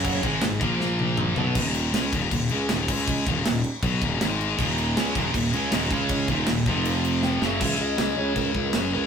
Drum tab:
CC |x-x-x-x---------|x-x-x-x-x-x-x-x-|x-x-x-x-x-x-x-x-|x-x-x-x-x-x-x-x-|
SD |----oo--o-------|----o-------o---|----o-------o---|----oo------o---|
T1 |----------o-----|----------------|----------------|----------------|
T2 |------------o---|----------------|----------------|----------------|
FT |--------------o-|----------------|----------------|----------------|
BD |o-o---o---------|o-----o-o-----o-|o-o-----o-o-----|o-----o-o-----o-|

CC |x-x-x-x-x-x-----|x---x---x---x---|
SD |----oo------o-o-|----o-------o---|
T1 |----------------|----------------|
T2 |----------------|----------------|
FT |----------------|----------------|
BD |o-o---o---------|o-------o-o-----|